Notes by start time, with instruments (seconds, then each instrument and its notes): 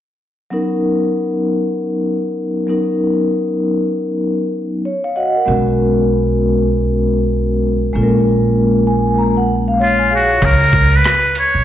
0.50 vibraphone F#3 B3 C#4 D#4 A#4
2.67 vibraphone F#3 B3 C#4 D#4 A#4
4.85 vibraphone C#5
5.04 vibraphone C#5 F5
5.16 vibraphone F#4 D#5 F#5
5.36 vibraphone A#4 F#5
5.45 upright bass B1, vibraphone G#3 B3 C#4 F#4 A#4
7.93 upright bass A#1, vibraphone G#3 A#3 C#4 F4 A4
8.03 vibraphone A#4
8.87 vibraphone G#5
9.18 vibraphone A#5
9.37 vibraphone F#5
9.68 vibraphone F5
9.80 muted trumpet F4, vibraphone C#5
9.99 vibraphone C#5 G#5
10.11 vibraphone G#4 F5
10.15 muted trumpet F#4
10.30 vibraphone F4 C#5
10.42 upright bass C#2, muted trumpet A#4, kick, closed hi-hat, crash
10.72 kick, shaker
10.96 muted trumpet B4
11.04 cross-stick, closed hi-hat
11.35 muted trumpet C#5, closed hi-hat, shaker
11.54 upright bass A#1